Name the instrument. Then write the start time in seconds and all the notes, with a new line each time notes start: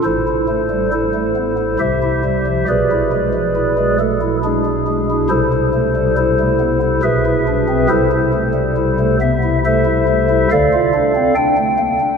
pipe organ
0.04 A1 A2 E4 A4 C5
0.28 E4
0.48 A3
0.71 G3
0.92 E4 A4 C5
1.14 A3
1.36 B3
1.57 E4
1.79 C2 C3 G4 C5 E5
2.03 E4
2.25 G3
2.46 F3
2.68 B1 B2 G#4 B4 D5
2.91 E4
3.12 G#3
3.34 F3
3.56 E4
3.78 G#3
3.99 A3 A4
4.21 E4
4.44 G#3 D4 E4 G#4
4.65 E4
4.87 G#3
5.10 E4
5.30 C2 C3 E4 A4 C5
5.53 E4
5.74 A3
5.96 G3
6.17 E4 A4 C5
6.39 A3
6.60 B3
6.81 E4
7.03 B1 B2 G#4 B4 E5
7.25 E4
7.47 D4
7.69 C4
7.89 C2 C3 E4 A4 C5
8.12 E4
8.33 A3
8.54 G3
8.77 E4
8.99 A3
9.21 B3 E5
9.43 E4
9.65 A3 A4 C5 E5
9.85 E4
10.08 A3
10.29 E4
10.51 D2 D3 A4 D5 F5
10.73 F4
10.94 D4
11.15 C4
11.36 D4 G5
11.57 A3
11.79 A#3
12.00 D4